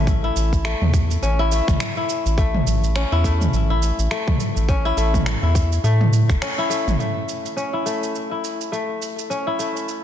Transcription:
Already playing: A1 A3 C#4 E4
0.07 kick, shaker
0.24 E4
0.36 A1, shaker
0.53 kick, shaker
0.65 A3, finger snap, shaker
0.81 E2, mid tom
0.94 kick, shaker
1.11 shaker
1.22 A1 C#4, shaker
1.39 E4
1.52 A3, shaker
1.68 A1, finger snap, kick, mid tom, shaker
1.80 finger snap, shaker
1.97 E4
2.09 shaker
2.26 A1, shaker
2.38 A3, kick, shaker
2.54 mid tom
2.66 A1, shaker
2.84 shaker
2.96 C#4, finger snap, shaker
3.12 E2 E4
3.24 A3, kick, shaker
3.41 mid tom, shaker
3.53 A1, shaker
3.70 E4
3.83 shaker
3.99 A1, shaker
4.11 A3, finger snap, shaker
4.28 kick, mid tom
4.40 shaker
4.56 A1, shaker
4.69 C#4, kick, shaker
4.85 E4
4.97 A1 A3, shaker
5.14 kick, mid tom, shaker
5.26 finger snap, shaker
5.42 E2 E4
5.55 kick, shaker
5.72 shaker
5.84 A2 A3, shaker
6.01 mid tom
6.13 shaker
6.29 E1, finger snap, kick, shaker
6.42 C#4, finger snap, shaker
6.58 E4
6.70 A3, shaker
6.87 A1, mid tom, shaker
6.99 A3, shaker
7.29 shaker
7.46 shaker
7.57 C#4, shaker
7.73 E4
7.86 A3, shaker
8.03 shaker
8.15 shaker
8.31 E4
8.44 shaker
8.61 shaker
8.72 A3, shaker
9.02 shaker
9.19 shaker
9.30 C#4, shaker
9.47 E4
9.59 A3, shaker
9.77 shaker
9.89 shaker

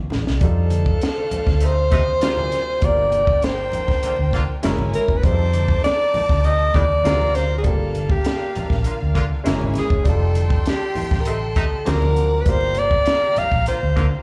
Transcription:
Already playing: D3 F3 A3 C4 F4
0.10 A1, snare, low conga
0.27 C2, snare
0.40 F2 G3 D4 D#4 F4 C5 F5, kick, closed hi-hat
0.44 A4
0.70 closed hi-hat, high conga
0.86 kick
1.01 snare, closed hi-hat
1.18 muted conga
1.31 muted fingered electric bass stroke, closed hi-hat, low conga
1.47 D2, kick, snare
1.60 C3 A3 D#4, closed hi-hat
1.65 C5
1.91 D#2 C3 A3 D#4, kick, closed hi-hat, high conga
2.21 D2 C3 F#3 A#3 C4 D4 F4 A#4 C5 G#5, snare, closed hi-hat
2.37 high conga, low conga
2.52 snare, closed hi-hat
2.80 G1 G3 A#3 D4 F4 A#4 G5, kick, closed hi-hat, muted conga
2.85 A#4 D5
2.97 muted conga
3.12 closed hi-hat, high conga
3.27 kick
3.42 C5, snare, closed hi-hat
3.72 closed hi-hat, low conga
3.88 kick, snare
4.02 D3 A#3 F4, muted fingered electric bass stroke, closed hi-hat, muted conga
4.17 D2, muted conga
4.31 D3 A#3 F4, kick, closed hi-hat, high conga
4.62 F#1 C#3 G#3 A#3 C#4 E4 F#4 A#4 C#5 G#5, snare, closed hi-hat
4.79 G#1, muted conga, high conga, low conga
4.94 A#4, closed hi-hat
5.08 F#1, kick
5.17 B4
5.22 F2 G3 C4 D#4 F4 C5 A5 D6, kick, closed hi-hat, muted conga
5.26 G#4
5.33 A4
5.39 muted conga
5.53 closed hi-hat, high conga
5.68 kick
5.84 D5, snare, closed hi-hat
6.14 muted fingered electric bass stroke, open hi-hat, low conga
6.29 D2, kick, snare
6.44 C3 A3 D#4 D#5, closed hi-hat
6.59 muted conga
6.74 D#2 A2 G3 D4 D5, kick, closed hi-hat, high conga
7.03 D2 C3 F#3 A#3 C4 D4 F4 F#4 A#4 F5 A#5, snare, closed hi-hat, muted conga
7.21 high conga, low conga
7.35 C5, snare, closed hi-hat
7.58 G3 G#4
7.64 G1 A#3 D4 F4 G4 A4 F5, kick, closed hi-hat, muted conga
7.95 closed hi-hat, high conga
8.10 G4, kick
8.24 snare, closed hi-hat, muted conga
8.55 muted fingered electric bass stroke, closed hi-hat, low conga
8.70 A#1, kick, snare
8.84 D3 A#3 F4, closed hi-hat
9.00 D2, muted conga
9.15 D3 A#3 F4, kick, closed hi-hat, high conga
9.43 F#1 C#3 G#3 A#3 C#4 E4 F#4 A#4 C#5 G#5, snare, closed hi-hat
9.61 G#1, high conga, low conga
9.74 snare, closed hi-hat, low conga
9.79 G#4
9.90 F#1, kick
10.03 F1 G3 D4 D#4 F4 A4 G5 C6, kick, closed hi-hat, muted conga
10.08 A4
10.20 muted conga
10.35 closed hi-hat, high conga
10.50 kick
10.66 G4, snare, closed hi-hat, muted conga
10.95 muted fingered electric bass stroke, open hi-hat, low conga
11.11 A1, kick, snare
11.21 A#4, muted conga
11.25 C3 A3 D#4 A4, closed hi-hat
11.39 muted conga
11.55 C3 A3 D#4, kick, closed hi-hat, high conga
11.85 D2 C3 F3 F#3 A#3 C4 D4 A#4 F#5 D6, snare, closed hi-hat, muted conga
12.02 high conga, low conga
12.16 closed hi-hat
12.41 G3 B4
12.46 G1 A#3 D4 F4 G4 A#4 C5 F5 A#5, kick, closed hi-hat, muted conga
12.61 muted conga
12.75 closed hi-hat, high conga
12.79 D5
12.91 kick
13.06 snare, closed hi-hat, muted conga
13.22 muted conga
13.36 F5, muted fingered electric bass stroke, closed hi-hat, low conga
13.52 A#1, kick
13.66 D3 A#3 F4 C5, muted fingered electric bass stroke, closed hi-hat, muted conga
13.83 D2
13.96 D3 A#3 F4, kick, closed hi-hat, high conga

